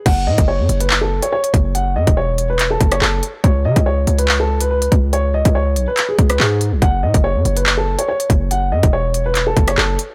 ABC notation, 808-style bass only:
X:1
M:4/4
L:1/16
Q:1/4=142
K:F#dor
V:1 name="808-style bass" clef=bass
F,,,2 A,, F,,,2 F,, F,,,4- F,,, z3 F,,,2- | F,,,2 F,, E,,,6- E,,, F,,,2 F,,,2 z2 | C,,2 C, C,,3 C,,8 C,,2- | C,,3 C,,3 B,,, z3 C,,2 G,,3 B,,, |
F,,,2 A,, F,,,2 F,, F,,,4- F,,, z3 F,,,2- | F,,,2 F,, E,,,6- E,,, F,,,2 F,,,2 z2 |]